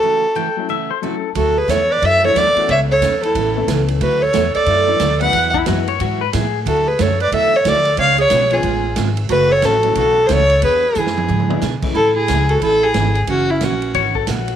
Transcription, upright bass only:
X:1
M:4/4
L:1/8
Q:"Swing" 1/4=181
K:A
V:1 name="Upright bass" clef=bass
z8 | D,,2 E,,2 F,,2 E,, z | C,,2 E,,2 A,,,2 C,,2 | D,,2 E,, z F,,2 D,,2 |
E,,2 F,,2 G,,2 A,,2 | D,,2 F,,2 E,,2 D,,2 | C,,2 B,,,2 A,,,2 G,,,2 | F,,,2 A,,,2 B,,,2 C,,2 |
E,,2 F,,2 G,,2 B,, z | A,,2 C,,2 A,,,2 G,,,2 | F,,,2 ^A,,,2 G,,,2 A,,,2 |]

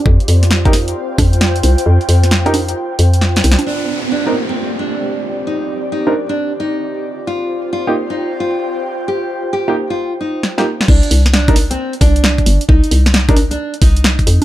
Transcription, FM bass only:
X:1
M:4/4
L:1/8
Q:"Swing 16ths" 1/4=133
K:Cm
V:1 name="FM bass" clef=bass
F,, F,,3 z F,,2 C,, | F,, F,,3 z F,,2 C,, | z8 | z8 |
z8 | z8 | C,, C,,3 z C,,2 G,,, | C,, C,,3 z C,,2 F,, |]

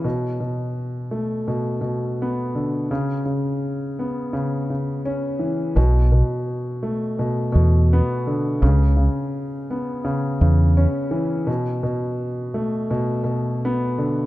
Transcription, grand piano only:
X:1
M:4/4
L:1/8
Q:"Swing 16ths" 1/4=84
K:Bm
V:1 name="Grand piano" clef=bass
B,, B,,2 A, B,, B,, B, D, | C, C,2 B, C, C, C E, | B,, B,,2 A, B,, B,, B, D, | C, C,2 B, C, C, C E, |
B,, B,,2 A, B,, B,, B, D, |]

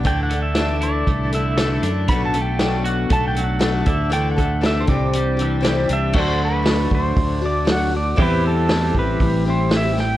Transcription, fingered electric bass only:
X:1
M:4/4
L:1/8
Q:1/4=118
K:Dmix
V:1 name="Fingered electric bass" clef=bass
D,,4 C,,3 F,, | B,,,4 B,,,3 D,,- | D,,3 C,,4 C,, | D,,3 D,, D,,4 |
E,,3 A,,, A,,,4 |]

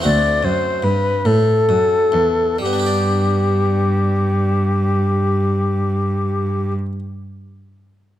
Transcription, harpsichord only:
X:1
M:6/8
L:1/8
Q:3/8=43
K:G
V:1 name="Harpsichord"
[A,CF]6 | [G,B,DGd]6- | [G,B,DGd]6 |]
V:2 name="Harpsichord" clef=bass
D,, F,, G,, A,, F,, E,, | z6 | z6 |]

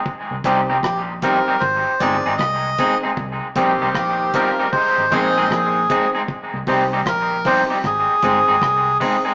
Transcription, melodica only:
X:1
M:4/4
L:1/16
Q:"Swing 16ths" 1/4=77
K:Cm
V:1 name="Melodica"
z4 G2 B2 c2 d2 e3 z | z4 G2 B2 c2 e2 A3 z | z4 B2 c2 A6 z2 |]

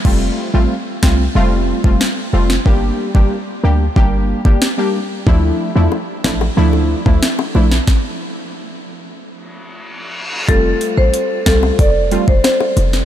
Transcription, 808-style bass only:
X:1
M:4/4
L:1/16
Q:1/4=92
K:F
V:1 name="808-style bass" clef=bass
F,,,2 z A,,, z2 C,,2 F,,,3 F,,, z2 F,,,2 | G,,,2 z G,,, z2 D,,2 G,,,3 G,,, z4 | D,,2 z E,, z2 A,,,2 D,,3 D,, z2 B,,,2 | z16 |
F,,,2 z A,,, z2 C,,2 F,,,3 F,,, z2 F,,,2 |]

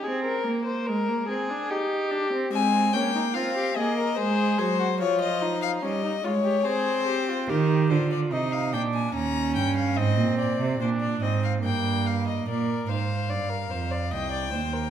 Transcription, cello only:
X:1
M:3/4
L:1/16
Q:1/4=72
K:Ab
V:1 name="Cello" clef=bass
z12 | z12 | z12 | E,2 =D,2 C,2 B,,2 E,,2 G,,2 |
A,, B,,2 C, B,,2 A,,2 G,,4 | B,,2 A,,2 G,,2 F,,2 C,,2 E,,2 |]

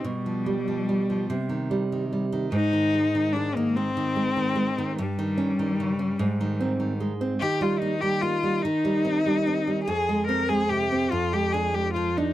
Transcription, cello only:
X:1
M:6/8
L:1/16
Q:3/8=49
K:Cm
V:1 name="Cello"
G,8- G,2 z2 | E4 D B, C6 | G,8- G,2 z2 | G F E G F2 E6 |
A2 B A G2 F G A G F E |]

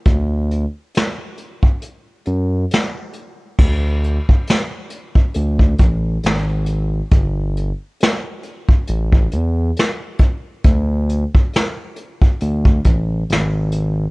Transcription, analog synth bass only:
X:1
M:4/4
L:1/16
Q:"Swing 16ths" 1/4=68
K:D
V:1 name="Analog synth bass" clef=bass
D,,3 z6 z F,,2 z4 | [K:Amix] D,,3 z4 z D,,2 A,,,2 ^G,,,4 | G,,,3 z4 z A,,,2 E,,2 z4 | D,,3 z4 z D,,2 A,,,2 ^G,,,4 |]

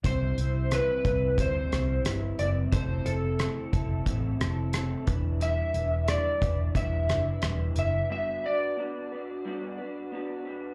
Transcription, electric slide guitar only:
X:1
M:4/4
L:1/8
Q:"Swing 16ths" 1/4=89
K:Clyd
V:1 name="Electric slide guitar"
c2 B2 c2 z d | c A6 z | e2 d2 e2 z e | e d6 z |]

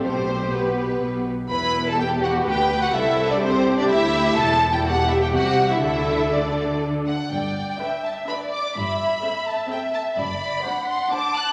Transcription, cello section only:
X:1
M:3/4
L:1/8
Q:1/4=125
K:Clyd
V:1 name="Cello section" clef=bass
B,,4 B,, z | E,,4 D,,2 | C,,4 D,,2 | [K:G] E,,4 C,2 |
D,4- D, z | G,,2 z4 | G,,2 z4 | F,,2 z4 |]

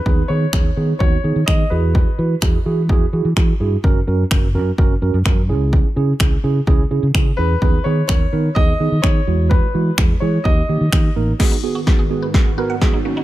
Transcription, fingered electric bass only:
X:1
M:4/4
L:1/16
Q:1/4=127
K:G#m
V:1 name="Fingered electric bass" clef=bass
D,,2 D,2 D,,2 D,2 D,,2 D, D, z2 E,,2- | E,,2 E,2 E,,2 E,2 E,,2 E, E, z2 =G,,2 | F,,,2 F,,2 F,,,2 F,,2 F,,,2 F,, F,, F,,2 C,,2- | C,,2 C,2 C,,2 C,2 C,,2 C, C, C,2 E,,2 |
D,,2 D,2 D,,2 D,2 D,,2 D, D, D,2 E,,2- | E,,2 E,2 E,,2 E,2 D,,2 D, D, D,2 =A,,,2 | z16 |]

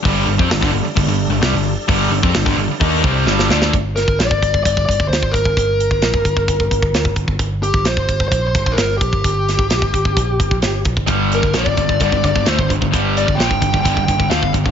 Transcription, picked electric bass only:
X:1
M:4/4
L:1/16
Q:1/4=130
K:Gm
V:1 name="Picked electric bass" clef=bass
G,,,2 G,,, F,, G,,, G,,, G,,, z G,,, G,,,2 G,,, C,, G,,,2 z | G,,,2 G,,, F,, G,,, G,,, G,,, z E,,2 C,,2 G,,,2 D,,2 | G,,,3 G,,, B,,, G,,, G,,, G,,, G,,, G,,, G,,, G,,, D,, G,,, G,,, G,,, | G,,,3 G,,, B,,, G,,, G,,, G,,, G,,, G,,, G,,, G,,, D,, G,,, G,,, G,,, |
G,,,3 G,,, B,,, G,,, G,,, G,,, B,,,2 G,,, B,,, G,,,2 B,,, G,,, | G,,,3 G,,, B,,, G,,, G,,, G,,, B,,,2 G,,, B,,, G,,,2 B,,, G,,, | G,,,3 G,,, B,,, G,,, G,,, G,,, G,,, G,,, G,,, G,,, D,, G,,, G,,, G,,, | G,,,3 G,,, B,,, G,,, G,,, G,,, G,,, G,,, G,,, G,,, D,, G,,, G,,, G,,, |]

